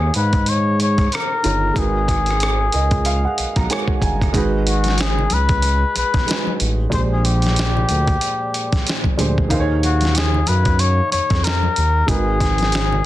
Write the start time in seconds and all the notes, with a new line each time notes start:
Already playing: D#2 D#3 D#4 G#4 C#5 F5
0.14 G#2 B4, closed hi-hat
0.33 kick, closed hi-hat
0.46 C#5, closed hi-hat
0.80 C#5, closed hi-hat
0.98 kick, cross-stick, closed hi-hat
1.12 A#4, cross-stick, closed hi-hat
1.43 G1 D#3 D#4 F4 G#4 C#5, closed hi-hat
1.74 G#1 G#3 D#4 F#4, kick, closed hi-hat
1.78 G#4 A#4 B4
2.08 kick, cross-stick, closed hi-hat
2.26 closed hi-hat
2.31 cross-stick
2.40 cross-stick, closed hi-hat
2.72 C#2 D#5, closed hi-hat
2.91 kick, closed hi-hat
3.05 F5, closed hi-hat
3.25 F#5
3.38 B1, closed hi-hat
3.56 B1 A#5, kick, cross-stick, closed hi-hat
3.69 G#3 D#4 F#4 A#4 C#5 G#5, cross-stick, closed hi-hat
3.88 kick
4.02 G1 G#5, kick, closed hi-hat
4.22 kick, cross-stick, closed hi-hat
4.33 G#1 G#3 D#4 F#4 G#4, kick, closed hi-hat, muted conga, low conga
4.38 B4
4.67 F#4, closed hi-hat, muted conga
4.84 closed hi-hat, high conga
4.88 snare
4.98 G#4, snare, closed hi-hat, muted conga
5.19 low conga
5.30 C#2 B4, closed hi-hat, muted conga, high conga
5.49 kick, closed hi-hat
5.62 closed hi-hat, muted conga
5.96 B1 B4, closed hi-hat, muted conga
6.14 B1, kick, snare, closed hi-hat, high conga
6.26 G#3 D#4 F#4 G#4 B4, closed hi-hat, muted conga
6.31 snare
6.47 high conga
6.60 A1, closed hi-hat
6.90 A#1 A#2 F3 G#3 D4 C5, kick, closed hi-hat, muted conga, low conga
6.94 G4 C5
7.12 G#4
7.25 G4, closed hi-hat, muted conga
7.42 closed hi-hat, high conga
7.47 snare
7.56 snare, closed hi-hat
7.77 low conga
7.89 D2, closed hi-hat, muted conga, high conga
8.07 kick, closed hi-hat
8.21 closed hi-hat
8.54 closed hi-hat
8.72 kick, snare, closed hi-hat, high conga
8.87 snare, closed hi-hat
9.04 kick, high conga
9.17 D2 A#2 F3 G#3 D4 G4 C5, closed hi-hat, muted conga
9.38 kick
9.48 D#2 D#3 D#4 G#4 F5, kick, closed hi-hat, low conga
9.53 C5
9.60 C#5
9.83 F#4, closed hi-hat, muted conga
10.01 closed hi-hat, high conga
10.05 snare
10.15 G#4, snare, closed hi-hat
10.34 low conga
10.46 F#2 B4, closed hi-hat, muted conga, high conga
10.65 kick, closed hi-hat
10.79 C#5, closed hi-hat
11.12 F2 C#5, closed hi-hat, muted conga
11.30 F2, kick, snare, closed hi-hat, high conga
11.44 A#4, snare, closed hi-hat
11.63 high conga
11.76 D#2, closed hi-hat
12.06 G#1 G#3 D#4 F#4 G#4 A#4, kick, closed hi-hat, muted conga, low conga
12.11 B4
12.40 kick, snare, closed hi-hat, muted conga
12.58 closed hi-hat, high conga
12.63 snare
12.72 snare, closed hi-hat, muted conga
12.92 low conga